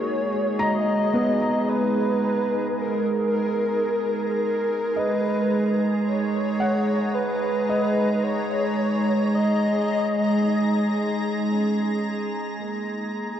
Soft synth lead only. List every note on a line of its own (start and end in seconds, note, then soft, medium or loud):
0.00 0.64 C#5 loud
0.63 1.70 D#5 loud
1.69 2.79 B4 loud
2.81 4.40 A#4 loud
4.45 5.00 A#4 medium
4.99 5.80 B4 loud
6.07 7.16 C#5 loud
7.14 8.25 B4 loud
8.24 9.36 C#5 loud
9.35 10.98 D#5 loud